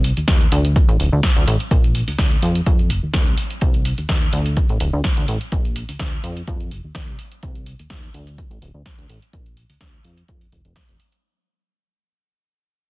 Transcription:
Already playing: analog synth bass C2
0.04 open hi-hat
0.17 analog synth bass D#2, closed hi-hat
0.28 analog synth bass D#2, kick, snare, closed hi-hat
0.41 closed hi-hat
0.52 analog synth bass D2, open hi-hat
0.65 closed hi-hat
0.76 kick, closed hi-hat
0.88 analog synth bass A1, closed hi-hat
1.00 analog synth bass D1, open hi-hat
1.12 analog synth bass D2
1.23 kick, snare, closed hi-hat
1.36 analog synth bass D2, closed hi-hat
1.47 analog synth bass A1, open hi-hat
1.60 closed hi-hat
1.71 analog synth bass A#1, kick, closed hi-hat
1.84 closed hi-hat
1.95 open hi-hat
2.08 analog synth bass D2, open hi-hat
2.19 analog synth bass D2, kick, snare, closed hi-hat
2.31 closed hi-hat
2.42 analog synth bass F2, open hi-hat
2.55 closed hi-hat
2.66 analog synth bass F2, kick, closed hi-hat
2.79 closed hi-hat
2.90 analog synth bass F1, open hi-hat
3.03 analog synth bass D#2
3.14 analog synth bass D#2, kick, snare, closed hi-hat
3.27 analog synth bass C2, closed hi-hat
3.38 open hi-hat
3.50 closed hi-hat
3.61 analog synth bass C2, kick, closed hi-hat
3.74 closed hi-hat
3.85 open hi-hat
3.98 analog synth bass D#2, closed hi-hat
4.09 analog synth bass D#2, kick, snare, closed hi-hat
4.22 closed hi-hat
4.33 analog synth bass D2, open hi-hat
4.46 closed hi-hat
4.57 kick, closed hi-hat
4.69 analog synth bass A1, closed hi-hat
4.80 analog synth bass D1, open hi-hat
4.93 analog synth bass D2
5.04 kick, snare, closed hi-hat
5.17 analog synth bass D2, closed hi-hat
5.28 analog synth bass A1, open hi-hat
5.41 closed hi-hat
5.52 analog synth bass A#1, kick, closed hi-hat
5.65 closed hi-hat
5.76 open hi-hat
5.89 analog synth bass D2, open hi-hat
5.99 analog synth bass D2, kick, snare, closed hi-hat
6.13 closed hi-hat
6.24 analog synth bass F2, open hi-hat
6.37 closed hi-hat
6.47 analog synth bass F2, kick, closed hi-hat
6.60 closed hi-hat
6.71 analog synth bass F1, open hi-hat
6.84 analog synth bass D#2
6.95 analog synth bass D#2, kick, snare, closed hi-hat
7.08 analog synth bass C2, closed hi-hat
7.19 open hi-hat
7.32 closed hi-hat
7.43 analog synth bass C2, kick, closed hi-hat
7.55 closed hi-hat
7.66 open hi-hat
7.79 analog synth bass D#2, closed hi-hat
7.90 analog synth bass D#2, kick, snare, closed hi-hat
8.03 closed hi-hat
8.14 analog synth bass D2, open hi-hat
8.27 closed hi-hat
8.38 kick, closed hi-hat
8.51 analog synth bass A1, closed hi-hat
8.62 analog synth bass D1, open hi-hat
8.74 analog synth bass D2
8.86 kick, snare, closed hi-hat
8.98 analog synth bass D2, closed hi-hat
9.09 analog synth bass A1, open hi-hat
9.22 closed hi-hat
9.33 analog synth bass A#1, kick, closed hi-hat
9.46 closed hi-hat
9.57 open hi-hat
9.69 analog synth bass D2, open hi-hat
9.81 analog synth bass D2, kick, snare, closed hi-hat
9.94 closed hi-hat
10.05 analog synth bass F2, open hi-hat
10.17 closed hi-hat
10.28 analog synth bass F2, kick, closed hi-hat
10.41 open hi-hat
10.52 analog synth bass F1, kick, open hi-hat
10.65 analog synth bass F1, closed hi-hat
10.76 kick, snare, closed hi-hat
10.89 analog synth bass F1, closed hi-hat
11.00 open hi-hat
11.12 closed hi-hat

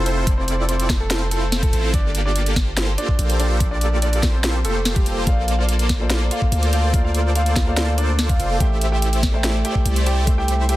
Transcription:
Already playing: 808-style bass F1
0.06 grand piano C4 C5, supersaw synth C4 E4 F4 A4 C5, closed hi-hat
0.27 supersaw synth C4 E4 F4 A4 D5, kick, closed hi-hat
0.38 grand piano C4 C5
0.48 closed hi-hat
0.69 grand piano C4 C5, closed hi-hat
0.80 closed hi-hat
0.89 supersaw synth C4 E4 F4 A4 C5, kick, snare, closed hi-hat
1.00 grand piano A3 A4
1.10 snare, closed hi-hat
1.31 grand piano A3 A4, closed hi-hat
1.52 snare, closed hi-hat
1.63 grand piano A3 A4, kick, closed hi-hat
1.73 808-style bass A1, supersaw synth C4 E4 F4 A4 C5, closed hi-hat
1.94 808-style bass G1, supersaw synth A#3 F4 G4 A4 D5, grand piano D4 D5, kick, closed hi-hat
2.15 closed hi-hat
2.25 grand piano D4 D5
2.36 closed hi-hat
2.46 closed hi-hat
2.56 supersaw synth A#3 F4 G4 A4 C5, kick, snare, closed hi-hat
2.77 snare, closed hi-hat
2.98 grand piano D4 D5, closed hi-hat
3.09 kick
3.19 808-style bass A#1, closed hi-hat
3.30 closed hi-hat
3.40 supersaw synth A#3 F4 G4 A4 C5, grand piano D4 D5, closed hi-hat
3.60 supersaw synth A#3 F4 G4 A4 D5, kick, closed hi-hat
3.71 grand piano D4 D5
3.81 closed hi-hat
4.02 grand piano D4 D5, closed hi-hat
4.13 closed hi-hat
4.23 supersaw synth A#3 F4 G4 A4 C5, kick, snare, closed hi-hat
4.34 grand piano C4 C5
4.44 snare, closed hi-hat
4.64 808-style bass F1, grand piano A3 A4, closed hi-hat
4.85 snare, closed hi-hat
4.96 grand piano G3 G4, kick, closed hi-hat
5.06 supersaw synth A#3 F4 G4 A4 C5, closed hi-hat
5.25 808-style bass A#1, felt piano A#3 F4 A4 C5, supersaw synth A#3 F4 A4 C5 D5, grand piano F4 F5, kick, closed hi-hat
5.29 felt piano D5
5.48 closed hi-hat
5.59 grand piano F4 F5
5.69 closed hi-hat
5.79 closed hi-hat
5.89 supersaw synth A#3 F4 A4 C5 D5, kick, snare, closed hi-hat
5.98 felt piano A#3 F4 A4 C5 D5
6.10 snare, closed hi-hat
6.31 grand piano F4 F5, closed hi-hat
6.42 kick
6.52 808-style bass D2, closed hi-hat
6.63 closed hi-hat
6.73 supersaw synth A#3 F4 A4 C5 D5, grand piano F4 F5, closed hi-hat
6.92 felt piano A#3 F4 A4 C5 D5, supersaw synth A#3 F4 A4 C5 D5, kick, closed hi-hat
7.05 grand piano F4 F5
7.15 closed hi-hat
7.35 grand piano F4 F5, closed hi-hat
7.46 closed hi-hat
7.56 supersaw synth A#3 F4 A4 C5 D5, kick, snare, closed hi-hat
7.65 felt piano A#3 F4 A4 C5, grand piano F4 F5
7.69 felt piano D5
7.77 snare, closed hi-hat
7.98 grand piano D4 D5, closed hi-hat
8.19 snare, closed hi-hat
8.29 grand piano F4 F5, kick, closed hi-hat
8.40 808-style bass F1, supersaw synth A#3 F4 A4 C5 D5, closed hi-hat
8.59 808-style bass A1, felt piano A3 A4 C5 E5 G5, supersaw synth A3 E4 G4 C5 E5, grand piano G4 G5, kick, closed hi-hat
8.81 closed hi-hat
8.92 grand piano G4 G5
9.02 closed hi-hat
9.13 closed hi-hat
9.23 supersaw synth A3 E4 G4 C5 D5, kick, snare, closed hi-hat
9.32 felt piano A3 A4 C5 E5
9.36 felt piano G5
9.44 snare, closed hi-hat
9.65 grand piano G4 G5, closed hi-hat
9.75 kick
9.85 808-style bass C2, closed hi-hat
9.96 closed hi-hat
10.06 supersaw synth A3 E4 G4 C5 D5, grand piano G4 G5, closed hi-hat
10.25 felt piano A3 A4 C5 E5, supersaw synth A3 E4 G4 C5 E5, kick, closed hi-hat
10.29 felt piano G5
10.38 grand piano G4 G5
10.48 closed hi-hat
10.69 grand piano G4 G5, closed hi-hat

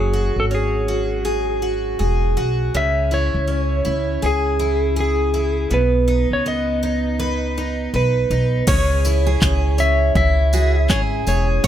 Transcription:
Already playing: upright bass F#1, twelve-string acoustic guitar F#3 C#4 G#4, electric slide guitar G#4
0.14 twelve-string acoustic guitar F#4
0.36 upright bass G#1, electric slide guitar A4
0.51 twelve-string acoustic guitar C#4, electric slide guitar G#4
0.88 twelve-string acoustic guitar F#4
1.25 twelve-string acoustic guitar G#4
1.62 twelve-string acoustic guitar F#4
1.99 upright bass E1, twelve-string acoustic guitar G#4
2.37 upright bass B1, twelve-string acoustic guitar F#4
2.75 upright bass C#2, twelve-string acoustic guitar C#3, electric slide guitar E5
3.11 twelve-string acoustic guitar E4, electric slide guitar C#5
3.34 upright bass C#2
3.48 twelve-string acoustic guitar C#4
3.85 upright bass C#2, twelve-string acoustic guitar E4
4.22 upright bass C#2, twelve-string acoustic guitar G#4, electric slide guitar G#4
4.59 twelve-string acoustic guitar E4
4.96 twelve-string acoustic guitar G#4
5.00 electric slide guitar G#4
5.34 twelve-string acoustic guitar E4
5.71 upright bass B1, twelve-string acoustic guitar B2, electric slide guitar B4
6.08 twelve-string acoustic guitar D#4
6.31 upright bass C#2, electric slide guitar C#5
6.46 twelve-string acoustic guitar B3, electric slide guitar D#5
6.83 twelve-string acoustic guitar D#4
7.20 twelve-string acoustic guitar B4
7.58 twelve-string acoustic guitar D#4
7.93 upright bass B1, twelve-string acoustic guitar B4, electric slide guitar B4
8.30 upright bass B1, twelve-string acoustic guitar D#4
8.67 upright bass C#2, twelve-string acoustic guitar C#3 G#4, steel-string acoustic guitar C#5, electric slide guitar C#5, kick, crash
9.05 twelve-string acoustic guitar E4, tambourine
9.27 steel-string acoustic guitar G#4
9.41 upright bass C#2, twelve-string acoustic guitar G#4, kick, clap
9.78 twelve-string acoustic guitar C#4, electric slide guitar E5, tambourine
10.15 upright bass C#2, twelve-string acoustic guitar E4, electric slide guitar E5, kick
10.53 steel-string acoustic guitar F#4, twelve-string acoustic guitar G#4, tambourine
10.89 upright bass G#1, twelve-string acoustic guitar E4, steel-string acoustic guitar G#4, electric slide guitar C#5, kick, clap
11.27 upright bass E1, twelve-string acoustic guitar G#4, electric slide guitar C#5, tambourine
11.64 upright bass F#1, twelve-string acoustic guitar F#3, steel-string acoustic guitar C#5, kick

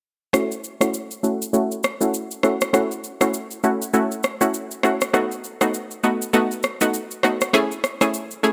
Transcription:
0.33 synth pluck A3 C#4 E4 F#4, cross-stick, shaker
0.51 shaker
0.64 shaker
0.81 synth pluck A3 C#4 E4 F#4, cross-stick, shaker
0.94 shaker
1.11 shaker
1.23 synth pluck A3 C#4 E4 F#4, shaker
1.42 shaker
1.53 synth pluck A3 C#4 E4 F#4, shaker
1.72 shaker
1.83 cross-stick, shaker
2.01 synth pluck A3 C#4 E4 F#4, shaker
2.14 shaker
2.31 shaker
2.43 synth pluck A3 C#4 E4 F#4, cross-stick, shaker
2.61 cross-stick, shaker
2.73 synth pluck A3 C#4 E4 F#4, cross-stick, shaker
2.91 shaker
3.04 shaker
3.21 synth pluck A3 C#4 E4 F#4, cross-stick, shaker
3.34 shaker
3.51 shaker
3.63 synth pluck A3 C#4 E4 F#4, shaker
3.82 shaker
3.93 synth pluck A3 C#4 E4 F#4, shaker
4.11 shaker
4.23 cross-stick, shaker
4.41 synth pluck A3 C#4 E4 F#4, shaker
4.54 shaker
4.71 shaker
4.83 synth pluck A3 C#4 E4 F#4, cross-stick, shaker
5.01 cross-stick, shaker
5.13 synth pluck A3 B3 D#4 F#4, cross-stick, shaker
5.32 shaker
5.44 shaker
5.61 synth pluck A3 B3 D#4 F#4, cross-stick, shaker
5.74 shaker
5.91 shaker
6.04 synth pluck A3 B3 D#4 F#4, shaker
6.22 shaker
6.33 synth pluck A3 B3 D#4 F#4, shaker
6.51 shaker
6.63 cross-stick, shaker
6.81 synth pluck A3 B3 D#4 F#4, shaker
6.94 shaker
7.11 shaker
7.23 synth pluck A3 B3 D#4 F#4, cross-stick, shaker
7.41 cross-stick, shaker
7.53 synth pluck A3 C#4 E4 G#4, cross-stick, shaker
7.71 shaker
7.84 cross-stick, shaker
8.01 synth pluck A3 C#4 E4 G#4, cross-stick, shaker
8.14 shaker
8.31 shaker
8.43 synth pluck A3 C#4 E4 G#4, shaker

